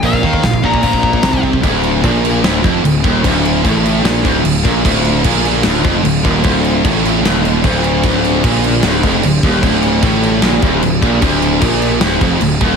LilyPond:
<<
  \new Staff \with { instrumentName = "Lead electric guitar" } { \time 4/4 \key d \phrygian \tempo 4 = 150 f''4. bes''2 r8 | r1 | r1 | r1 |
r1 | r1 | r1 | r1 | }
  \new Staff \with { instrumentName = "String section" } { \clef bass \time 4/4 \key d \phrygian << { r1 | <d f'>1~ | <d f'>1~ | <d f'>1~ |
<d f'>1~ | <d f'>1~ | <d f'>1~ | <d f'>1 | } \\ { r1 | a1~ | a1~ | a1~ |
a1 | g1~ | g1~ | g1 | } >> }
  \new Staff \with { instrumentName = "Distorted electric guitar" } { \clef bass \time 4/4 \key d \phrygian bes,8 ees8 bes,8 bes,8 bes,4 c4 | d,4 bes,4 d,8 f,8 d,8 ees,8 | d,4 a,4 bes,8 d,8 d,8 bes,8 | d,4 bes,4 d,8 f,8 d,8 ees,8 |
d,4 a,4 ees,4 d,4 | d,4 bes,4 d,8 f,8 d,8 ees,8 | d,4 a,4 bes,8 d,8 d,8 bes,8 | d,4 bes,4 d,8 f,8 d,8 ees,8 | }
  \new Staff \with { instrumentName = "Distorted electric guitar" } { \clef bass \time 4/4 \key d \phrygian bes,8 ees8 bes,8 bes,8 bes,4 c4 | d,4 bes,4 d,8 f,8 d,8 ees,8 | d,4 a,4 bes,8 d,8 d,8 bes,8 | d,4 bes,4 d,8 f,8 d,8 ees,8 |
d,4 a,4 ees,4 d,4 | d,4 bes,4 d,8 f,8 d,8 ees,8 | d,4 a,4 bes,8 d,8 d,8 bes,8 | d,4 bes,4 d,8 f,8 d,8 ees,8 | }
  \new Staff \with { instrumentName = "Picked electric bass" } { \clef bass \time 4/4 \key d \phrygian bes,,8 ees,8 bes,,8 bes,,8 bes,,4 c,4 | d,,4 bes,,4 d,,8 f,,8 d,,8 ees,,8 | d,,4 a,,4 bes,,8 d,,8 d,,8 bes,,8 | d,,4 bes,,4 d,,8 f,,8 d,,8 ees,,8 |
d,,4 a,,4 ees,,4 d,,4 | d,,4 bes,,4 d,,8 f,,8 d,,8 ees,,8 | d,,4 a,,4 bes,,8 d,,8 d,,8 bes,,8 | d,,4 bes,,4 d,,8 f,,8 d,,8 ees,,8 | }
  \new DrumStaff \with { instrumentName = "Drums" } \drummode { \time 4/4 <hho bd>16 bd16 bd16 bd16 <hho bd sn>16 bd16 bd16 bd16 <hho bd>16 bd16 bd16 bd16 <hho bd sn>16 bd16 bd16 bd16 | <cymc bd>8 cymc8 <cymc bd>8 cymc8 <cymc sn>8 <cymc bd>8 cymc8 <cymc bd>8 | <cymc bd>8 cymc8 <cymc bd>8 cymc8 <cymc sn>8 <cymc bd>8 cymc8 <cymc bd>8 | <cymc bd>8 cymc8 <cymc bd>8 cymc8 <cymc sn>8 <cymc bd>8 cymc8 <cymc bd>8 |
<cymc bd>8 cymc8 <cymc bd>8 cymc8 <cymc sn>8 cymc8 <cymc bd>8 cymc8 | <cymc bd>8 cymc8 <cymc bd>8 cymc8 <cymc sn>8 <cymc bd>8 cymc8 <cymc bd>8 | <cymc bd>8 cymc8 <cymc bd>8 cymc8 <cymc sn>8 <cymc bd>8 cymc8 <cymc bd>8 | <cymc bd>8 cymc8 <cymc bd>8 cymc8 <cymc sn>8 <cymc bd>8 cymc8 <cymc bd>8 | }
>>